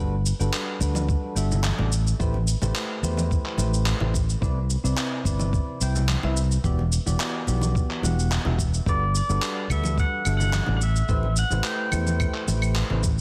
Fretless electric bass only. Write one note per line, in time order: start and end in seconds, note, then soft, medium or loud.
0.00 0.31 G1 medium
0.40 0.48 G1 medium
0.81 1.14 D2 medium
1.36 1.70 G1 loud
1.79 2.12 A1 loud
2.20 2.53 A1 medium
2.62 2.70 A1 medium
3.03 3.36 E2 medium
3.58 3.92 A1 loud
4.01 4.34 A1 loud
4.42 4.75 C2 loud
4.84 4.92 C2 medium
5.25 5.59 G1 medium
5.81 6.14 C2 loud
6.24 6.56 C2 loud
6.64 6.97 E1 medium
7.07 7.15 E1 medium
7.48 7.81 B1 loud
8.03 8.37 E1 medium
8.46 8.79 E1 medium
8.86 9.20 G1 medium
9.30 9.37 G1 medium
9.70 10.03 D2 medium
10.26 10.59 G1 loud
10.69 11.01 A1 loud
11.09 11.42 A1 loud
11.52 11.59 A1 medium
11.93 12.26 E2 loud
12.48 12.81 A1 loud
12.91 13.21 A1 medium